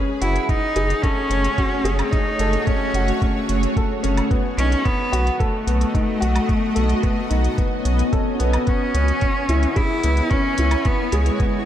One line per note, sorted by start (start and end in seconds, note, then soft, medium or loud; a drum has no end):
0.00 4.26 A3 medium
0.00 0.10 C#4 loud
0.00 4.27 F#4 medium
0.00 4.26 G#4 medium
0.00 4.27 C#5 loud
0.22 0.39 F#1 medium
0.22 0.42 E4 loud
0.22 0.47 F#4 medium
0.22 closed hi-hat medium
0.36 closed hi-hat soft
0.42 0.51 E4 medium
0.49 1.03 D#4 loud
0.49 kick loud
0.49 closed hi-hat soft
0.76 0.94 F#1 loud
0.76 1.02 G#4 loud
0.76 closed hi-hat medium
0.90 closed hi-hat soft
1.02 2.12 C#4 loud
1.02 1.30 A4 medium
1.02 kick loud
1.02 closed hi-hat soft
1.30 1.48 F#1 medium
1.30 1.57 C#4 medium
1.30 closed hi-hat medium
1.44 closed hi-hat soft
1.58 1.84 F#4 medium
1.58 kick loud
1.58 closed hi-hat soft
1.84 2.02 F#1 loud
1.84 2.11 G#4 loud
1.84 closed hi-hat medium
1.99 closed hi-hat soft
1.99 low woodblock medium
2.11 2.67 D#4 loud
2.11 kick loud
2.11 closed hi-hat soft
2.39 2.57 F#1 loud
2.39 2.66 A4 medium
2.39 closed hi-hat medium
2.53 closed hi-hat soft
2.65 3.20 C#4 loud
2.65 2.83 C#4 medium
2.65 kick loud
2.65 closed hi-hat soft
2.94 3.12 F#1 loud
2.94 3.21 F#4 medium
2.94 closed hi-hat medium
3.08 closed hi-hat soft
3.20 3.99 A3 medium
3.20 3.48 C#4 medium
3.20 kick medium
3.20 closed hi-hat soft
3.49 3.67 F#1 medium
3.49 closed hi-hat medium
3.63 closed hi-hat soft
3.77 4.02 A4 medium
3.77 kick loud
3.77 closed hi-hat soft
4.03 4.21 F#1 medium
4.03 4.29 C#4 loud
4.03 closed hi-hat medium
4.17 closed hi-hat soft
4.17 low woodblock medium
4.29 11.65 B3 medium
4.29 4.46 B3 loud
4.29 8.63 F#4 medium
4.29 6.46 A4 medium
4.29 8.63 D#5 medium
4.29 kick loud
4.29 closed hi-hat soft
4.57 4.75 B1 loud
4.57 4.87 C#4 loud
4.57 4.84 D#4 medium
4.57 closed hi-hat medium
4.72 closed hi-hat soft
4.85 5.42 B3 loud
4.85 kick loud
4.85 closed hi-hat soft
5.12 5.30 B1 medium
5.12 5.38 F#4 loud
5.12 closed hi-hat medium
5.27 closed hi-hat soft
5.39 8.13 A3 loud
5.39 5.65 A4 medium
5.39 kick medium
5.39 closed hi-hat soft
5.67 5.85 B1 loud
5.67 5.93 B3 medium
5.67 closed hi-hat medium
5.81 closed hi-hat soft
5.94 6.20 D#4 medium
5.94 kick loud
5.94 closed hi-hat soft
6.20 6.39 B1 medium
6.20 6.47 F#4 loud
6.20 closed hi-hat medium
6.36 closed hi-hat soft
6.36 low woodblock medium
6.49 11.65 G#5 medium
6.49 kick loud
6.49 closed hi-hat soft
6.75 6.94 B1 loud
6.75 7.01 A4 medium
6.75 closed hi-hat medium
6.89 closed hi-hat soft
7.02 7.18 B3 medium
7.02 kick loud
7.02 closed hi-hat soft
7.30 7.48 B1 loud
7.30 7.56 D#4 medium
7.30 closed hi-hat medium
7.44 closed hi-hat soft
7.57 7.84 B3 medium
7.57 kick loud
7.57 closed hi-hat soft
7.57 swell medium
7.85 8.03 B1 loud
7.85 closed hi-hat medium
7.99 closed hi-hat soft
8.12 8.38 A4 medium
8.12 kick loud
8.12 closed hi-hat soft
8.39 8.58 B1 medium
8.39 8.65 B3 loud
8.39 closed hi-hat medium
8.53 closed hi-hat soft
8.53 low woodblock medium
8.67 8.82 B3 loud
8.67 9.78 C#4 loud
8.67 11.65 E4 medium
8.67 11.65 C#5 medium
8.67 kick loud
8.67 closed hi-hat soft
8.94 9.12 C#2 loud
8.94 9.20 C#4 medium
8.94 closed hi-hat medium
9.08 closed hi-hat soft
9.21 kick loud
9.21 closed hi-hat soft
9.49 9.66 C#2 loud
9.49 9.75 E4 loud
9.49 closed hi-hat medium
9.63 closed hi-hat soft
9.76 10.31 E4 loud
9.76 9.91 G#4 medium
9.76 kick loud
9.76 closed hi-hat soft
10.03 10.21 C#2 loud
10.03 10.30 B3 medium
10.03 closed hi-hat medium
10.17 closed hi-hat soft
10.30 10.87 C#4 loud
10.30 10.57 C#4 medium
10.30 kick loud
10.30 closed hi-hat soft
10.58 10.76 C#2 medium
10.58 10.84 E4 loud
10.58 closed hi-hat medium
10.71 closed hi-hat soft
10.71 low woodblock medium
10.85 11.14 B3 loud
10.85 kick loud
10.85 closed hi-hat soft
11.12 11.30 C#2 loud
11.12 11.65 G#3 medium
11.12 11.38 G#4 medium
11.12 closed hi-hat medium
11.26 closed hi-hat soft
11.40 11.56 B3 medium
11.40 kick loud
11.40 closed hi-hat soft